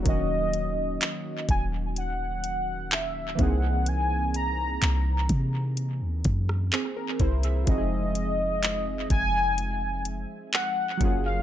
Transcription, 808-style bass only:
\new Staff \with { instrumentName = "808-style bass" } { \clef bass \time 4/4 \key f \phrygian \tempo 4 = 63 ees,,4 r8 ees,,2 c,8~ | c,4 c,8 c8. dis,16 ges,8 r8 c,8 | f,,4. f,,4~ f,,16 r8. ges,,8 | }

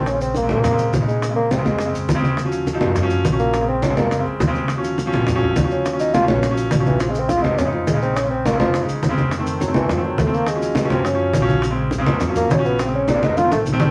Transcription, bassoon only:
\new Staff \with { instrumentName = "Bassoon" } { \time 4/4 \key bes \minor \tempo 4 = 207 des'8 c'8 bes8 bes4. r8 aes8~ | aes8 bes8 c'8 aes4 r4. | r2. r8 bes8~ | bes8 c'8 des'8 bes4 r4. |
r2. r8 des'8~ | des'8 ees'8 f'8 des'4 r4 e8 | \tuplet 3/2 { f8 aes8 c'8 } f'8 ees'8 des'8 f8 aes8 c'8 | des'8 c'8 bes8 f4 r4. |
r4 ges8 e8 f8 ges8 a8 bes8 | aes4. c'8 des'2 | r2 r8 bes8 des'8 ces'8 | c'8 des'8 d'8 ees'8 f'8 a8 r4 | }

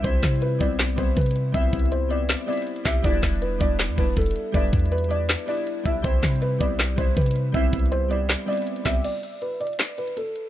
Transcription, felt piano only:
\new Staff \with { instrumentName = "Felt piano" } { \time 4/4 \key c \lydian \tempo 4 = 160 c''4 b'8 d''4 c''8 b'4 | e''4 c''8 d''4 d''4 e''8 | d''4 b'8 d''4 b'8 a'4 | d''4 b'8 d''4 d''4 e''8 |
c''4 b'8 d''4 c''8 b'4 | e''4 c''8 d''4 d''4 e''8 | d''4 b'8 d''4 b'8 a'4 | }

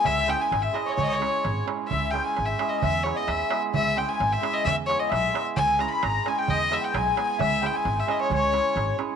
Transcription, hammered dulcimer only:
\new Staff \with { instrumentName = "Hammered dulcimer" } { \time 2/4 \tempo 4 = 131 r8 <gis cis' e' gis'>8 r8 <gis cis' e' gis'>8 | r8 <gis cis' e' gis'>8 r8 <gis cis' e' gis'>8 | r8 <gis cis' e' gis'>8 r8 <gis cis' e' gis'>8 | r8 <gis b e' gis'>8 r8 <gis b e' gis'>8 |
r8 <gis cis' e' gis'>8 r8 <gis cis' e' gis'>8 | r8 <gis b e' gis'>8 r8 <gis b e' gis'>8 | r8 <gis cis' e' gis'>8 r8 <gis cis' e' gis'>8 | r8 <gis b e' gis'>8 r8 <gis b e' gis'>8 |
r8 <gis cis' e' gis'>8 r8 <gis cis' e' gis'>8 | r8 <gis cis' e' gis'>8 r8 <gis cis' e' gis'>8 | }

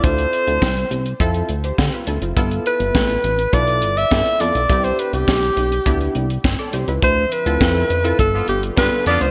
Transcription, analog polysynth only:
\new Staff \with { instrumentName = "Analog polysynth" } { \time 4/4 \key d \dorian \tempo 4 = 103 << { r2 r8. <g' c''>8 <f' b'>16 <e' a'>16 <c' f'>16~ | <c' f'>16 r2. r8. | r2. r16 <a' d''>16 <g' c''>16 <e' b'>16~ | <e' b'>16 r2. r8. | } \\ { <c' e' f' a'>4 r4 <c' e' f' a'>8 r4. | <b e' f' a'>4~ <b e' f' a'>16 r8. <b e' f' a'>8. r16 <b e' f' a'>16 r16 <b e' f' a'>16 r16 | <b d' e' g'>4~ <b d' e' g'>16 r8. <b d' e' g'>8. r4 r16 | r8. <c' e' f' a'>8. r16 <c' e' f' a'>16 r4 <b d' f' a'>8. r16 | } >> }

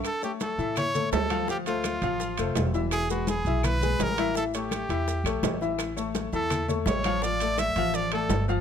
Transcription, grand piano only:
\new Staff \with { instrumentName = "Grand piano" } { \time 4/4 \key a \phrygian \tempo 4 = 167 r8 <a a' cis''>4 <e e' e''>4 <a a' cis''>4 <f f' f''>8 | <f f' f''>8 <a a' c''>4 <f f' f''>4 <a a' c''>4 <e e' e''>8~ | <e e' e''>8 <gis gis' b'>4 <e e' e''>4 <gis gis' b'>4 <e e' e''>8 | <e e' e''>8 <a a' cis''>4 <e e' e''>4 <a a' cis''>4 <e e' e''>8~ |
<e e' e''>8 <a a' cis''>4 <e e' e''>4 <a a' cis''>4 <f f' f''>8 | <f f' f''>8 <a a' d''>4 <f f' f''>4 <a a' d''>4 <f f' f''>8 | }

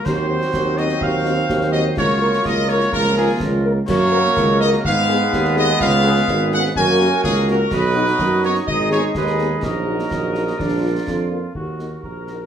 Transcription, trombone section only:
\new Staff \with { instrumentName = "Trombone section" } { \time 2/4 \key bes \minor \tempo 4 = 125 << { c'2~ | c'2 | bes2~ | bes2 |
\key ees \minor bes2 | ces'2~ | ces'2 | bes2 |
dis'2 | ees'4 ees'4 | ees'2 | d'4. r8 |
r2 | } \\ { ges2~ | ges2~ | ges2 | f2 |
ges2 | aes2~ | aes2 | ges2 |
fis2 | aes4 aes4 | ges2 | f4. r8 |
r2 | } >> }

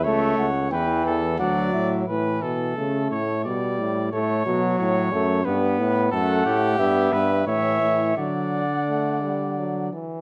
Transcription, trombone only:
\new Staff \with { instrumentName = "Trombone" } { \clef bass \time 3/4 \key a \dorian \tempo 4 = 88 a8 r8 e4 fis4 | e4 a4 g4 | a8 fis4 a8 b4 | \key d \major a4 b4 e4 |
fis8 r8 a8 g8 fis8 e8 | }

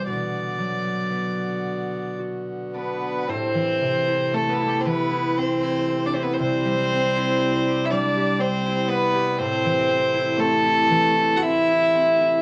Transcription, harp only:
\new Staff \with { instrumentName = "Harp" } { \time 3/4 \key a \dorian \tempo 4 = 58 b,8 fis8 b4 fis'8 d'8 | a,16 e16 c16 e'16 a16 e'16 e16 e'16 c'16 e'16 c'16 e'16 | c16 g16 c'16 e'8 g'16 g16 g'8 e'8 g'16 | a,16 e16 c'16 e'16 c'16 e'16 e16 e'16 c'16 e'16 c'16 e'16 | }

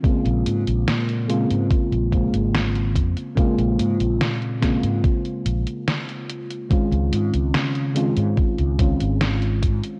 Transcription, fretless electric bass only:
\new Staff \with { instrumentName = "Fretless electric bass" } { \clef bass \time 4/4 \key bes \minor \tempo 4 = 72 r16 bes,,16 aes,16 bes,,16 bes,8. aes,16 r16 bes,,8 aes,,8. f,16 r16 | r16 bes,,16 aes,16 bes,,16 bes,8. aes,16 r8 bes,,16 r4 r16 | r16 des,16 aes,16 des,16 des8. aes,16 r16 des,8 aes,,8. aes,16 r16 | }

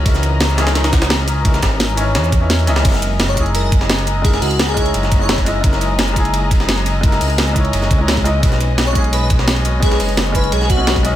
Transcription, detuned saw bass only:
\new Staff \with { instrumentName = "Detuned saw bass" } { \clef bass \time 4/4 \key fis \mixolydian \tempo 4 = 172 cis,1~ | cis,8 gis,,4. e,4. cis,8 | fis,,1~ | fis,,8 cis,4. fis,,4. fis,,8 |
fis,,1~ | fis,,8 cis,4. fis,,8 cis,4. | b,,1~ | b,,8 fis,,4. b,,4. b,,8 | }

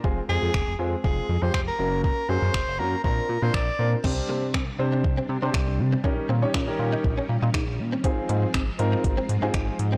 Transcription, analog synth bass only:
\new Staff \with { instrumentName = "Analog synth bass" } { \clef bass \time 4/4 \key c \minor \tempo 4 = 120 f,,8 f,16 f,16 f,,16 f,,16 f,8 f,,8 f,16 f,16 f,,8 ges,,8~ | ges,,8 ges,16 ges,16 ges,,16 ges,,16 ges,8 bes,,8 bes,16 bes,16 bes,,8 bes,8 | c,8 c8 c,8 c8 c,8 c16 c16 c,8 c8 | bes,,8 bes,8 bes,,8 bes,8 bes,,8 bes,16 bes,16 bes,,8 bes,8 |
aes,,8 aes,8 aes,,8 aes,8 aes,,8 aes,16 aes,16 aes,,8 aes,8 | }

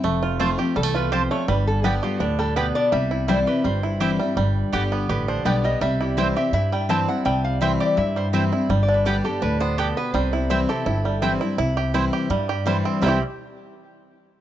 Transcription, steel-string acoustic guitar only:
\new Staff \with { instrumentName = "Steel-string acoustic guitar" } { \time 4/4 \key c \major \tempo 4 = 166 << { r4 <f a c' f'>8 <c' f'>8 r2 | r4 <d g b g'>8 <b g'>8 r2 | r4 <e g c' e'>8 <c' e'>8 r4 <e g c' e'>8 <c' e'>8 | r4 <d g b g'>4 r4 <d g b g'>8 <b g'>8 |
r4 <e g c' e'>8 <c' e'>8 r4 <e g c' e'>8 <c' e'>8 | r4 <e g c' e'>4 r4 <e g c' e'>8 <c' e'>8 | r4 <d g b g'>8 <b g'>8 r2 | r4 <e g c' e'>8 <c' e'>8 r4 <e g c' e'>8 <c' e'>8 |
r4 <e g c' e'>4 r4 <e g c' e'>4 | <c e g c' e'>8 r2. r8 | } \\ { f,2 e,4 f,4 | g,2 a,4 b,4 | c2 g,2 | g,2 d2 |
c2 g,2 | c2 g,2 | g,2 a,4 b,4 | c2 g,2 |
c2 g,2 | r1 | } >> }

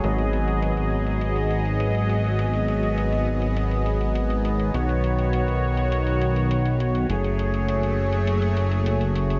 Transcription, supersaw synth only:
\new Staff \with { instrumentName = "Supersaw synth" } { \time 4/4 \key gis \phrygian \tempo 4 = 102 << { <fis gis' dis''>1~ | <fis gis' dis''>1 | <dis fis' cis''>1 | <fis gis' cis''>1 | } \\ { b1~ | b1~ | b1 | a1 | } >> }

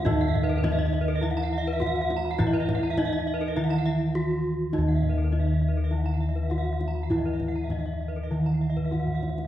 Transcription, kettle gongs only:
<<
  \new Staff \with { instrumentName = "Kettle gongs" } { \time 4/4 \tempo 4 = 103 << { r4 fes'8 r4. fes'8 r8 | r4 fes'8 r4. fes'8 r8 | r4 fes'8 r4. fes'8 r8 | r4 fes'8 r4. fes'8 r8 | } \\ { ees'2. r4 | fes'2. r4 | ees'2. r4 | fes'2. r4 | } >> }
  \new Staff \with { instrumentName = "Kettle gongs" } { \clef bass \time 4/4 << { ees4 r2. | r2 ees2~ | ees4 r2. | r2 ees2 | } \\ { ees,1~ | ees,2 r2 | ees,1~ | ees,2 r2 | } >> }
>>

